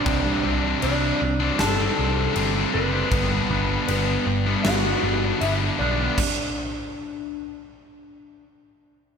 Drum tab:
CC |x-x-x-x-|x-x-x-x-|x-------|
SD |----o---|----o---|--------|
BD |o-------|o-------|o-------|